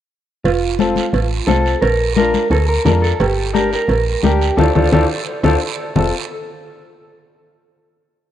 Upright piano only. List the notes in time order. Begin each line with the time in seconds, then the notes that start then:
0.79 C4 F4 A4
1.47 C4 F4 A4
2.17 D4 F4 A#4
2.86 D4 F4 A#4
3.53 D4 G4 A#4
4.24 D4 G4 A#4
4.57 D4 F4 A4
4.75 D4 F4 A4
4.93 D4 F4 A4
5.45 D4 F4 A4
5.96 C4 F4 A4